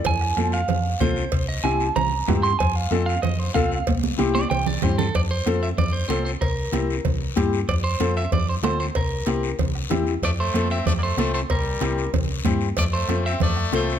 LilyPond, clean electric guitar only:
\new Staff \with { instrumentName = "Clean electric guitar" } { \time 4/4 \key f \major \tempo 4 = 189 aes''4. f''4. c''4~ | c''8 ees''8 aes''4 bes''4 r8 c'''8 | aes''8 f''8 ees''8 f''8 ees''8 c''8 f''4 | r4. d''8 g''8 d''8 c''8 a'8 |
d''8 c''4 e''8 d''8 c''8 c''8 c''8 | bes'2 r2 | d''8 c''4 e''8 d''8 c''8 c''8 c''8 | bes'2 r2 |
d''8 c''4 e''8 d''16. d''32 c''8 c''8 c''8 | bes'2 r2 | d''8 c''4 e''8 d''4 c''4 | }